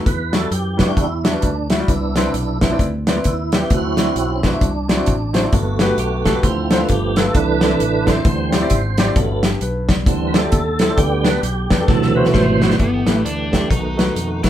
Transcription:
0.05 E2 E3 B4, kick, closed hi-hat
0.32 G3 E4 F#4 A4 D5, snare, closed hi-hat
0.51 F#2 G4, closed hi-hat
0.77 G3 D4 E4 F#4 B4, kick, snare, closed hi-hat
0.87 G3 E4 F#4 D5
0.97 E2 E4, kick, closed hi-hat
1.24 G3 D4 E4 F#4 E5, snare, closed hi-hat
1.33 G3 E4 F#4 B4
1.42 D2, kick, closed hi-hat
1.70 G3 E4 F#4 E5, snare, closed hi-hat
1.79 G3 E4 F#4 D5
1.88 C2 C3 B3 D4 E4, kick, closed hi-hat
2.16 C4 E4 B4 D5, snare, closed hi-hat
2.34 B1, closed hi-hat
2.61 B3 C4 D4 E4 B4 E5, kick, snare, closed hi-hat
2.71 C4 E4 B4 D5
2.79 D2, kick, closed hi-hat
3.07 C4 E4 B4 D5, snare, closed hi-hat
3.16 C4 E4 B4 D5
3.24 D#2 E4, kick, closed hi-hat
3.52 C4 E4 G4 B4 D5, snare, closed hi-hat
3.61 C4 E4 B4 E5
3.70 D2 D3 F#3 C4 E4 F#4, kick, closed hi-hat
3.97 C4 E4 F#4 D5, snare, closed hi-hat
4.15 B1, closed hi-hat
4.36 C#4
4.43 C4 D4 E4 F#4 B4, kick, snare, closed hi-hat
4.53 C4 E4 F#4 E5
4.61 C2, kick, closed hi-hat
4.88 C4 E4 F#4 D5, snare, closed hi-hat
4.96 C4 E4 F#4 D5
5.06 A1, kick, closed hi-hat
5.33 C4 E4 F#4 C5, snare, closed hi-hat
5.43 C4 E4 F#4 D5
5.52 G1 G2 A3 B3 F#4, kick, closed hi-hat
5.79 A3 F#4 G4 B4, snare, closed hi-hat
5.98 B1 G4, closed hi-hat
6.26 A3 F#4 G4 A4, kick, snare, closed hi-hat
6.35 A3 F#4 G4 B4
6.43 D2 D3 F3 C4 E4 C5, kick, closed hi-hat
6.71 A3 D4 F4 C5, snare, closed hi-hat
6.80 A3 D4 F4 B4
6.88 G1 G2 F3 A3 B3 G4, kick, closed hi-hat
7.16 A3 F4 G4 A4 B4, snare, closed hi-hat
7.25 A3 F4 G4 B4
7.34 C2 C3 E3 A3 D4 B4, kick, closed hi-hat
7.61 C4 E4 A4 D5, snare, closed hi-hat
7.80 A1, closed hi-hat
8.07 C4 E4 A4 C5 D5, kick, snare, closed hi-hat
8.16 C4 E4 A4 D5
8.25 D2 D3 E3 G3 C4, kick, closed hi-hat
8.52 C4 E4 G4 D5, snare, closed hi-hat
8.62 C4 E4 G4 D5
8.70 G#1, kick, closed hi-hat
8.98 C4 E4 G4 D5, snare, closed hi-hat
9.07 C4 E4 G4 D5
9.16 G1 G2 F#3 A3 B3, kick, closed hi-hat
9.43 G4, snare, closed hi-hat
9.61 B1 B4, closed hi-hat
9.89 D5, kick, snare, closed hi-hat
10.06 D2 D3 E3 G3 C4, kick, closed hi-hat
10.27 B4
10.34 C4 E4 G4 A4 D5, snare, closed hi-hat
10.43 C4 E4 G4 D5
10.52 D#2, kick, closed hi-hat
10.79 C4 E4 G4 A4, snare, closed hi-hat
10.89 C4 E4 G4 D5
10.96 D2 D3 G3 B3 G4, kick, closed hi-hat
11.23 B3 D4 G4 B4, snare, closed hi-hat
11.27 D5
11.41 B1 G4, closed hi-hat
11.70 E2 B3 D4 G4 D5, kick, snare, closed hi-hat
11.80 B3 D4 G4 A4
11.87 D2 B2 C3 D3 E3 F#3 A4, kick, snare
12.02 snare
12.15 B3 E4 F#4 B4 C5
12.25 B3 E4 F#4 A4, snare
12.33 G#1 A3 C5, kick, snare
12.61 B3 E4 F#4 B4, snare
12.70 B3 E4 F#4 D5, snare
12.79 G1 G2 E3 A3 B3 G4, kick, closed hi-hat
13.07 A1 A3 E4 G4 B4, snare, closed hi-hat
13.25 D2 D4, closed hi-hat
13.52 A3 E4 G4 D5, kick, snare, closed hi-hat
13.70 B1 B2 D#3 A3 B3 D#4 F#4, kick, closed hi-hat
13.97 A3 D#4 F#4 B4, snare, closed hi-hat
14.16 F2, closed hi-hat
14.43 A3 D#4 E4 F#4 B4, kick, snare, closed hi-hat

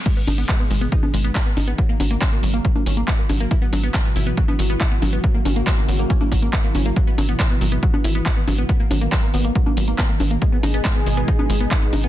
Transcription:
0.06 B2 D#3 G#3 D#4 G#4, kick, closed hi-hat, crash
0.17 B3
0.27 G#1 D#4, open hi-hat, high conga
0.38 B3, closed hi-hat
0.49 G#3, kick, clap, closed hi-hat
0.60 B3
0.70 G#1 G#3, open hi-hat
0.81 B3, closed hi-hat
0.92 D#4, kick, closed hi-hat
1.03 B3, high conga
1.14 G#1 G#3, open hi-hat
1.24 B3, closed hi-hat
1.35 G#3, kick, clap, closed hi-hat
1.46 B3
1.57 G#1 D#4, open hi-hat, high conga
1.68 B3, closed hi-hat
1.78 C#3 F#3 A#3 F#4, kick, closed hi-hat
1.89 A#3
2.00 G#1 F#3, open hi-hat, high conga
2.11 A#3, closed hi-hat
2.21 C#4, kick, clap, closed hi-hat
2.32 A#3
2.43 G#1 F#3, open hi-hat
2.54 A#3, closed hi-hat
2.65 F#3, kick, closed hi-hat
2.76 A#3, high conga
2.86 G#1 C#4, open hi-hat
2.97 A#3, closed hi-hat
3.08 F#3, kick, clap, closed hi-hat
3.19 A#3
3.29 G#1 F#3, open hi-hat, high conga
3.40 A#3, closed hi-hat
3.51 B2 E3 E4, kick, closed hi-hat
3.62 B3
3.73 G#1 F#3, open hi-hat, high conga
3.83 B3, closed hi-hat
3.94 F#3, kick, clap, closed hi-hat
4.05 B3
4.16 G#1 E4, open hi-hat
4.27 B3, closed hi-hat
4.37 F#3, kick, closed hi-hat
4.48 B3, high conga
4.59 G#1 F#3, open hi-hat
4.70 B3, closed hi-hat
4.81 E4, kick, clap, closed hi-hat
4.91 B3
5.02 G#1 F#3, open hi-hat, high conga
5.13 B3, closed hi-hat
5.24 C#3 F#3 A#3 E4, kick, closed hi-hat
5.35 A#3
5.45 G#1 C#4, open hi-hat, high conga
5.56 A#3, closed hi-hat
5.67 F#3, kick, clap, closed hi-hat
5.78 A#3
5.88 G#1 F#3, open hi-hat
5.99 A#3, closed hi-hat
6.10 C#4, kick, closed hi-hat
6.21 A#3, high conga
6.32 G#1 F#3, kick, open hi-hat
6.42 A#3, closed hi-hat
6.53 F#3, kick, clap, closed hi-hat
6.64 A#3
6.75 G#1 C#4, open hi-hat, high conga
6.86 A#3, closed hi-hat
6.96 B2 E3 F#3, kick, closed hi-hat
7.07 B3
7.18 G#1 F#3, open hi-hat, high conga
7.29 B3, closed hi-hat
7.40 E4, kick, clap, closed hi-hat
7.50 B3
7.61 G#1 F#3, open hi-hat
7.72 B3, closed hi-hat
7.83 F#3, kick, closed hi-hat
7.94 B3, high conga
8.04 G#1 E4, open hi-hat
8.15 B3, closed hi-hat
8.26 F#3, kick, clap, closed hi-hat
8.37 B3
8.48 G#1 F#3, open hi-hat, high conga
8.58 B3, closed hi-hat
8.69 D#3 A#3 B3, kick, closed hi-hat
8.80 A#3
8.91 G#1 F#3, open hi-hat, high conga
9.01 A#3, closed hi-hat
9.12 F#3, kick, clap, closed hi-hat
9.23 A#3
9.34 G#1 B3, open hi-hat
9.45 A#3, closed hi-hat
9.55 F#3, kick, closed hi-hat
9.66 A#3, high conga
9.77 G#1 F#3, open hi-hat
9.88 A#3, closed hi-hat
9.98 B3, kick, clap, closed hi-hat
10.09 A#3
10.20 G#1 F#3, open hi-hat, high conga
10.31 A#3, closed hi-hat
10.42 B2 G#3 D#4 G#4, kick, closed hi-hat
10.52 B3
10.63 G#1 D#4, open hi-hat, high conga
10.74 B3, closed hi-hat
10.85 G#3, kick, clap, closed hi-hat
10.96 B3
11.06 G#1 G#3, open hi-hat
11.17 B3, closed hi-hat
11.28 D#4, kick, closed hi-hat
11.39 B3, high conga
11.50 G#1 G#3, open hi-hat
11.60 B3, closed hi-hat
11.71 G#3, kick, clap, closed hi-hat
11.82 B3
11.93 G#1 D#4, open hi-hat, high conga
12.04 B3, closed hi-hat

